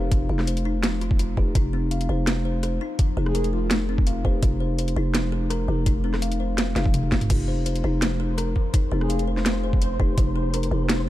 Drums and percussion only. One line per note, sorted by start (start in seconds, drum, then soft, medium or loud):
0.12 kick loud
0.12 closed hi-hat medium
0.39 cross-stick medium
0.39 snare soft
0.47 closed hi-hat medium
0.57 closed hi-hat soft
0.83 snare loud
0.83 closed hi-hat medium
1.01 closed hi-hat soft
1.11 kick loud
1.19 closed hi-hat medium
1.37 kick medium
1.55 kick loud
1.55 closed hi-hat medium
1.91 closed hi-hat medium
2.01 closed hi-hat soft
2.27 snare loud
2.27 closed hi-hat medium
2.63 cross-stick soft
2.63 closed hi-hat medium
2.99 kick loud
2.99 closed hi-hat medium
3.26 cross-stick medium
3.35 closed hi-hat medium
3.44 closed hi-hat soft
3.71 snare loud
3.71 closed hi-hat medium
3.98 kick loud
4.07 closed hi-hat medium
4.25 kick medium
4.43 kick loud
4.43 closed hi-hat medium
4.79 closed hi-hat medium
4.88 closed hi-hat soft
5.15 snare loud
5.15 closed hi-hat medium
5.50 cross-stick medium
5.50 closed hi-hat medium
5.86 kick loud
5.86 closed hi-hat medium
6.14 cross-stick medium
6.14 snare soft
6.22 closed hi-hat medium
6.32 closed hi-hat soft
6.58 snare loud
6.58 closed hi-hat medium
6.76 snare medium
6.76 closed hi-hat soft
6.85 kick loud
6.85 high tom medium
6.94 closed hi-hat medium
6.94 mid tom medium
7.03 mid tom medium
7.12 kick medium
7.12 snare loud
7.21 closed hi-hat soft
7.21 mid tom medium
7.30 kick loud
7.30 closed hi-hat medium
7.30 crash loud
7.66 closed hi-hat medium
7.76 closed hi-hat soft
8.02 snare loud
8.02 closed hi-hat medium
8.38 cross-stick medium
8.38 closed hi-hat medium
8.56 kick medium
8.74 kick loud
8.74 closed hi-hat medium
9.01 cross-stick medium
9.10 closed hi-hat medium
9.19 closed hi-hat soft
9.37 snare soft
9.46 snare loud
9.46 closed hi-hat medium
9.73 kick loud
9.82 closed hi-hat medium
10.00 kick medium
10.18 kick loud
10.18 closed hi-hat medium
10.54 closed hi-hat medium
10.63 closed hi-hat soft
10.89 snare loud
10.89 closed hi-hat medium